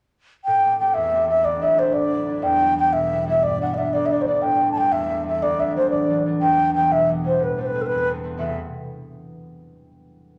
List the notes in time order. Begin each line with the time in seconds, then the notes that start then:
0.45 A2 G5
0.65 A3 C4 G4
0.79 A3 C4 G4 G5
0.94 E2 E5
1.11 A3 C4
1.15 G4
1.27 A3 C4 G4 E5
1.43 D2 D5
1.61 F#3 D4 E4 E5
1.77 F#3 D4 E4 C5
1.93 A2 D5
2.10 F#3 D4 E4
2.28 F#3 D4 E4
2.42 E2 G5
2.61 G3 B3 E4
2.76 G3 B3 E4 G5
2.93 B2 E5
3.12 G3 B3 E4
3.25 G3 B3 E4 E5
3.42 G2 D5
3.61 G3 B3 D4 F#5
3.74 G3 B3 D5
3.78 D4 E5
3.93 D2 D5
4.06 E5
4.11 G3 B3 D4 D5
4.21 C5
4.26 G3 B3 D4 D5
4.42 A2 G5
4.60 G3 A3 C4
4.72 G3 A5
4.76 A3 C4 G5
4.91 E2 E5
5.09 G3 A3 C4
5.24 G3 A3 E5
5.28 C4
5.42 D2 D5
5.60 E3 F#3 D4 E5
5.76 E3 F#3 D4 C5
5.90 A2 D5
6.10 E3 F#3 D4
6.26 E3 F#3 D4
6.41 E2 G5
6.60 E3 G3 B3
6.75 E3 G3 B3 G5
6.90 B2 E5
7.07 E3 G3
7.11 B3
7.24 E3 G3 B3 C5
7.39 A2 B4
7.58 A3 B3 C4 C5
7.66 B4
7.74 A3 B3 C4
7.81 A4
7.86 B4
7.91 E2
8.07 A3 B3 C4
8.24 A3 B3 C4
8.37 A1 E2 C3 A3 E4 B4 E5